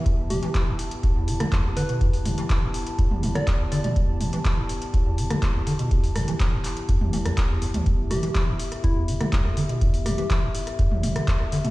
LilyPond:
<<
  \new Staff \with { instrumentName = "Analog synth pad" } { \time 4/4 \key e \minor \tempo 4 = 123 << { a''1~ | a''1~ | a''1~ | a''1 |
e''1~ | e''1 | } \\ { <b e' g'>1~ | <b e' g'>1~ | <b e' g'>1~ | <b e' g'>1~ |
<b e' g'>1~ | <b e' g'>1 | } >> }
  \new Staff \with { instrumentName = "Soft synth lead" } { \time 4/4 \key e \minor r8 g'16 r2 r8. b'16 r16 | r2 r8. d''16 r8 d''16 d''16 | r1 | r1 |
r8 g'16 r4 r16 e'16 r4. r16 | r8 g'16 g'16 r2. | }
  \new Staff \with { instrumentName = "Acid bass" } { \clef bass \time 4/4 \key e \minor e,8 e16 e16 e16 e,16 r8 e,16 e,16 e16 d16 e,16 e,16 d16 b,16 | e,8 e16 e16 e16 e,16 r8 e,16 e,16 e16 d16 e,16 e,16 d16 b,16 | e,8 e16 e16 e16 e,16 r8 e,16 e,16 e16 d16 e,16 e,16 d16 b,16 | e,8 e16 e16 e16 e,16 r8 e,16 e,16 e16 e,16 e,16 e,16 e,16 d,16 |
e,8 e16 e16 e16 e,16 r8 e,16 e,16 e16 d16 e,16 e,16 d16 b,16 | e,8 e16 e16 e16 e,16 r8 e,16 e,16 e16 d16 e,16 e,16 d16 b,16 | }
  \new DrumStaff \with { instrumentName = "Drums" } \drummode { \time 4/4 <hh bd>8 <hho toml>16 hh16 <hc hh bd>8 hho16 hh16 <hh bd>8 hho16 <hh ss toml>16 <hc hh bd>8 hho16 hh16 | <hh bd>16 hho16 <hho toml>16 hh16 <hc hh bd>8 hho16 hh16 <hh bd>16 toml16 <hho toml>16 <hh ss>16 <hc hh bd>8 hho16 <hh toml>16 | <hh bd>8 <hho toml>16 hh16 <hc hh bd>8 hho16 hh16 <hh bd>8 hho16 <hh ss toml>16 <hc hh bd>8 hho16 hh16 | <hh bd>16 hho16 <hho ss toml>16 hh16 <hc hh bd>8 <hc hho>16 hh16 <hh bd>16 toml16 <hho toml>16 <hh ss>16 <hc hh bd>8 hho16 <hh toml>16 |
<hh bd>8 <hho ss toml>16 hh16 <hc hh bd>8 hho16 <hh ss>16 <hh bd>8 hho16 <hh ss toml>16 <hc hh bd>16 ss16 hho16 hh16 | <hh bd>16 hho16 <hho ss toml>16 hh16 <hc hh bd>8 hho16 <hh ss>16 <hh bd>16 toml16 <hho toml>16 <hh ss>16 <hc hh bd>16 ss16 hho16 <hh toml>16 | }
>>